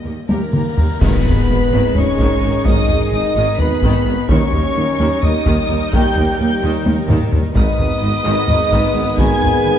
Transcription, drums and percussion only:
0.29 taiko high
0.53 taiko mid
0.78 taiko low
1.01 concert bass drum, taiko, crash
1.25 taiko low
1.95 taiko low
2.19 taiko
2.65 taiko
2.89 taiko low
3.59 taiko low
3.82 taiko
4.29 taiko
4.52 taiko low
5.23 taiko low
5.46 taiko
5.93 taiko
6.16 taiko low
6.86 taiko high
7.09 taiko low-mid
7.33 taiko low
7.55 taiko
7.79 taiko low
8.48 taiko low
8.72 taiko
9.18 taiko
9.42 taiko low

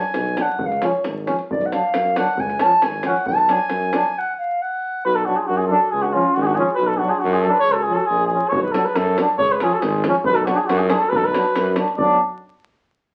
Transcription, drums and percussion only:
0.14 davul high
0.26 davul high
0.37 davul high
0.48 davul high
0.59 davul low
0.72 davul high
0.82 davul high
1.04 davul high
1.27 davul high
1.39 davul high
1.51 davul low
1.61 davul high
1.72 davul high
1.94 davul high
2.06 davul high
2.16 davul high
2.28 davul high
2.37 davul low
2.50 davul high
2.59 davul high
2.82 davul high
2.93 davul high
3.03 davul high
3.16 davul high
3.26 davul low
3.38 davul high
3.49 davul high
3.70 davul high
3.83 davul high
3.93 davul high
4.05 davul high
8.52 davul low
8.74 davul high
8.96 davul high
9.07 davul high
9.18 davul high
9.28 davul high
9.38 davul low
9.50 davul high
9.60 davul high
9.82 davul high
9.93 davul high
10.04 davul high
10.15 davul high
10.24 davul low
10.37 davul high
10.47 davul high
10.69 davul high
10.79 davul high
10.90 davul high
11.02 davul high
11.12 davul low
11.24 davul high
11.34 davul high
11.45 davul high
11.55 davul high
11.66 davul high
11.76 davul high
11.88 davul high
11.98 davul low

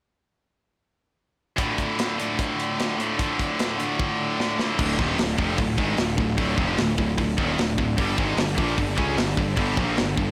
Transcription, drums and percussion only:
1.58 kick, closed hi-hat
1.78 kick, closed hi-hat
1.99 snare, closed hi-hat
2.20 closed hi-hat
2.39 kick, closed hi-hat
2.60 closed hi-hat
2.80 snare, closed hi-hat
3.00 closed hi-hat
3.19 kick, closed hi-hat
3.39 kick, closed hi-hat
3.59 snare, closed hi-hat
3.80 closed hi-hat
3.99 kick, high tom
4.40 snare
4.59 snare
4.79 kick, crash
4.99 kick
5.18 snare, open hi-hat
5.38 kick
5.58 kick, open hi-hat
5.78 kick
5.97 snare, open hi-hat
6.18 kick
6.38 kick, open hi-hat
6.58 kick
6.78 snare, open hi-hat
6.98 kick
7.18 kick, open hi-hat
7.38 kick
7.58 snare, open hi-hat
7.78 kick
7.98 kick, open hi-hat
8.18 kick
8.37 snare, open hi-hat
8.58 kick
8.78 kick, open hi-hat
8.98 kick
9.17 snare, open hi-hat
9.37 kick
9.56 kick, open hi-hat
9.77 kick
9.97 snare, open hi-hat
10.17 kick

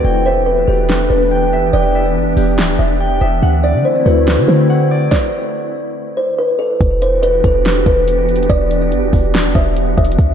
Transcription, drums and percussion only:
0.90 snare
2.37 open hi-hat
2.59 snare
4.28 snare
5.12 kick, snare
6.81 kick, closed hi-hat
7.02 closed hi-hat
7.23 closed hi-hat
7.44 kick, closed hi-hat
7.65 snare, closed hi-hat
7.86 kick, closed hi-hat
8.08 closed hi-hat
8.29 closed hi-hat
8.36 closed hi-hat
8.43 closed hi-hat
8.50 kick, closed hi-hat
8.71 closed hi-hat
8.92 closed hi-hat
9.13 kick, open hi-hat
9.34 snare, closed hi-hat
9.55 kick, closed hi-hat
9.77 closed hi-hat
9.98 kick, closed hi-hat
10.05 closed hi-hat
10.12 closed hi-hat
10.19 kick, closed hi-hat

